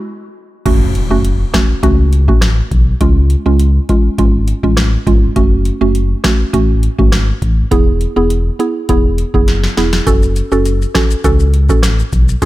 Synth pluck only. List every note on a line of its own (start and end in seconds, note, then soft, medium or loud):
0.66 1.07 A3 medium
0.66 1.07 C#4 medium
0.66 1.07 F#4 loud
1.10 1.26 A3 medium
1.10 1.26 C#4 medium
1.10 1.26 F#4 medium
1.53 1.71 A3 medium
1.53 1.71 C#4 medium
1.53 1.71 F#4 medium
1.83 2.00 A3 loud
1.83 2.00 C#4 medium
1.83 2.00 F#4 loud
2.28 2.44 A3 medium
2.28 2.44 C#4 medium
2.28 2.44 F#4 medium
3.01 3.42 G#3 loud
3.01 3.42 C#4 medium
3.01 3.42 F4 loud
3.46 3.61 G#3 medium
3.46 3.61 C#4 medium
3.46 3.61 F4 medium
3.89 4.06 G#3 medium
3.89 4.06 C#4 medium
3.89 4.06 F4 medium
4.18 4.36 G#3 loud
4.18 4.36 C#4 medium
4.18 4.36 F4 loud
4.63 4.79 G#3 medium
4.63 4.79 C#4 medium
4.63 4.79 F4 medium
5.07 5.24 G#3 medium
5.07 5.24 C#4 medium
5.07 5.24 F4 medium
5.36 5.77 A3 loud
5.36 5.77 C#4 medium
5.36 5.78 F#4 loud
5.81 5.97 A3 medium
5.81 5.97 C#4 medium
5.81 5.97 F#4 medium
6.24 6.41 A3 medium
6.24 6.41 C#4 medium
6.24 6.42 F#4 medium
6.53 6.71 A3 loud
6.53 6.71 C#4 medium
6.53 6.71 F#4 loud
6.98 7.14 A3 medium
6.98 7.14 C#4 medium
6.98 7.14 F#4 medium
7.71 8.13 B3 medium
7.71 8.13 E4 medium
7.71 8.13 G#4 loud
8.16 8.32 B3 medium
8.16 8.32 E4 medium
8.16 8.32 G#4 medium
8.59 8.77 B3 medium
8.59 8.77 E4 medium
8.59 8.77 G#4 medium
8.89 9.06 B3 loud
8.89 9.06 E4 medium
8.89 9.06 G#4 loud
9.34 9.50 B3 medium
9.34 9.50 E4 medium
9.34 9.50 G#4 medium
9.77 9.94 B3 medium
9.77 9.94 E4 medium
9.77 9.95 G#4 medium
10.07 10.48 C#4 medium
10.07 10.48 F#4 medium
10.07 10.48 A4 loud
10.52 10.67 C#4 medium
10.52 10.67 F#4 medium
10.52 10.67 A4 medium
10.95 11.12 C#4 medium
10.95 11.12 F#4 medium
10.95 11.12 A4 medium
11.24 11.41 C#4 loud
11.24 11.42 F#4 medium
11.24 11.42 A4 loud
11.69 11.85 C#4 medium
11.69 11.85 F#4 medium
11.69 11.85 A4 medium
12.42 12.45 C#4 loud
12.42 12.45 F4 medium